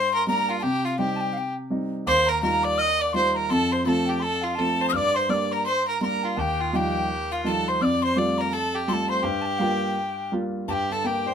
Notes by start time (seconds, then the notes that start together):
Already playing: G2 C5 C6
0.14 A#4
0.27 G3 A#3 D4 A#4 A#5
0.49 F4 F5
0.60 C3 G4 G5 A5
0.85 F4 F5
0.99 G3 C4 D#4 G4 G5
1.16 A5
1.21 G5
1.33 F5
1.38 G5
1.70 G3 C4 D#4
2.06 D#2 C5 D6
2.11 C6
2.26 A#4 A#5
2.42 G3 D#4 F4 A#4 A#5
2.63 D5 D6
2.78 D#5 D#6 F6
3.00 D5 D6
3.13 G3 D#4 F4 C5 C6
3.30 C5
3.35 A#4 A#5
3.49 F2 A4 A5 C6
3.72 C5 C6
3.85 F3 A3 C4 A4 A5 C6
4.06 G4 G5
4.20 A4 C6
4.24 A5
4.42 F4 F5
4.55 F3 A3 C4 A4 A5
4.81 C5
4.89 G2 D#6 F6
4.95 D5 D6
5.14 C5 C6
5.29 G3 A#3 D4 D5 F6
5.34 D6
5.52 A#4 A#5
5.65 C5 C6
5.88 A#4 A#5
6.01 G3 A#3 D4 A#4 C6
6.05 A#5
6.24 F4 F5
6.37 D#2 G4 A5
6.41 G5
6.61 F4
6.73 F3 G3 D#4 G4 G5
7.32 F4 F5
7.44 F3 G3 D#4 A4 A5
7.68 C5 C6
7.81 F2 D5 D6 F6
8.02 C5 C6
8.16 G3 A3 F4 D5 D6
8.38 A#4 A#5
8.52 A4 A5
8.75 G4
8.88 G3 A3 F4 A4 C6
8.94 A5
9.10 C5 C6
9.24 G2 G4 G5
9.42 G5 A5
9.59 G3 A#3 F4 F5 G5
10.32 G3 A#3 F4
10.68 G2 G4 A5
10.73 G5
10.90 D3 A4 A5
11.04 A#3 G4 G5
11.26 D4 C5